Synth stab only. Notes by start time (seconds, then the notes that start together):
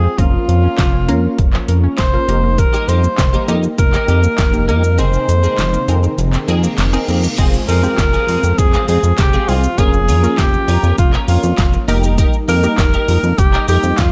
0.18 A#3 C#4 F4 A#4
1.08 A#3 C#4 F4 A#4
2.13 A#3 C#4 F4 A#4
2.28 A#3 D#4 G4 A#4
3.48 A#3 D#4 G4 A#4
4.53 A#3 D#4 G4 A#4
4.98 C4 D#4 G#4 A#4
5.88 C4 D#4 G#4 A#4
6.93 C4 D#4 G#4 A#4
7.38 G#3 C4 F4 G#4
7.83 G#3 C4 F4 G4
9.48 G#3 C4 F4 G#4
9.78 A#3 C#4 F4 A#4
10.23 A#3 C#4 F4 A#4
11.88 A#3 D#4 G4 A#4
12.63 A#3 D#4 G4 A#4